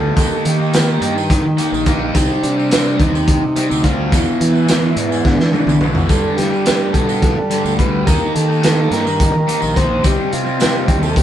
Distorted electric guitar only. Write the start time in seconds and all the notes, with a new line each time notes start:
Already playing: G2 D3 G3
0.15 D#3 A#3 D#4
0.58 A#3 D#4
0.72 D#3 A#3 D#4
1.01 D#3 A#3 D#4
1.16 muted distorted electric guitar stroke
1.57 D#3 A#3 D#4
1.71 muted distorted electric guitar stroke
1.86 D#3 A#3 D#4
2.14 C3 G3 C4
2.57 G3 C4
2.70 C3 G3 C4
2.98 C3 G3 C4
3.14 muted distorted electric guitar stroke
3.56 C3 G3 C4
3.69 muted distorted electric guitar stroke
3.83 C3 G3 C4
4.11 E2 B2 E3
4.53 B2 E3
4.67 E2 B2 E3
4.96 E2 B2 E3
5.10 muted distorted electric guitar stroke
5.52 E2 B2 E3
5.67 muted distorted electric guitar stroke
5.80 E2 B2 E3
6.08 G2 D3 G3
6.51 D3 G3
6.66 G2 D3 G3
6.94 G2 D3 G3
7.07 muted distorted electric guitar stroke
7.50 G2 D3 G3
7.64 muted distorted electric guitar stroke
7.78 G2 D3 G3
8.07 D#3 A#3 D#4
8.48 A#3 D#4
8.62 D#3 A#3 D#4
8.92 D#3 A#3 D#4
9.06 muted distorted electric guitar stroke
9.47 D#3 A#3 D#4
9.61 muted distorted electric guitar stroke
9.75 D#3 A#3 D#4
10.03 C3 G3 C4
10.44 G3 C4
10.59 C3 G3 C4
10.87 C3 G3 C4
11.00 muted distorted electric guitar stroke